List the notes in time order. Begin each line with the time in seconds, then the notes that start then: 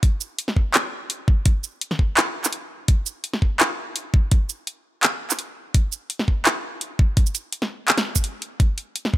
0.03 kick, closed hi-hat
0.21 shaker
0.39 closed hi-hat
0.48 snare
0.56 kick
0.74 clap, closed hi-hat
1.10 closed hi-hat
1.28 kick
1.46 kick, closed hi-hat
1.64 shaker
1.81 closed hi-hat
1.91 snare
1.99 kick
2.17 clap, closed hi-hat
2.44 clap, shaker
2.53 closed hi-hat
2.88 kick, closed hi-hat
3.06 shaker
3.24 closed hi-hat
3.33 snare
3.42 kick
3.60 clap, closed hi-hat
3.96 closed hi-hat
4.14 kick
4.31 kick, closed hi-hat
4.49 shaker
4.67 closed hi-hat
5.03 clap, closed hi-hat
5.30 clap, shaker
5.39 closed hi-hat
5.74 kick, closed hi-hat
5.92 shaker
6.10 closed hi-hat
6.19 snare
6.28 kick
6.45 clap, closed hi-hat
6.81 closed hi-hat
6.99 kick
7.17 kick, closed hi-hat
7.26 shaker
7.35 closed hi-hat, shaker
7.53 closed hi-hat
7.62 snare
7.88 clap, closed hi-hat
7.98 snare, closed hi-hat
8.15 kick, shaker
8.24 closed hi-hat
8.42 closed hi-hat
8.60 kick, closed hi-hat
8.78 closed hi-hat
8.96 closed hi-hat
9.05 snare
9.14 kick